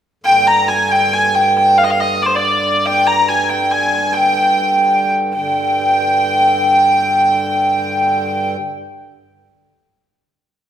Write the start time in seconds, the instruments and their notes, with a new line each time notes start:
0.24 harmonium G2 D3, hurdy-gurdy G5
0.47 hurdy-gurdy A#5
0.68 hurdy-gurdy G#5
0.91 hurdy-gurdy G5
1.13 hurdy-gurdy G#5
1.35 hurdy-gurdy G5
1.57 hurdy-gurdy G5
1.78 hurdy-gurdy F5
1.84 hurdy-gurdy D#5
1.90 hurdy-gurdy F5
2.00 hurdy-gurdy D#5
2.22 hurdy-gurdy C5 D5
2.35 hurdy-gurdy D5
2.86 hurdy-gurdy G5
3.07 hurdy-gurdy A#5
3.29 hurdy-gurdy G#5
3.49 hurdy-gurdy G5
3.71 hurdy-gurdy G#5
4.13 hurdy-gurdy G5
5.35 harmonium G2 D3, hurdy-gurdy G5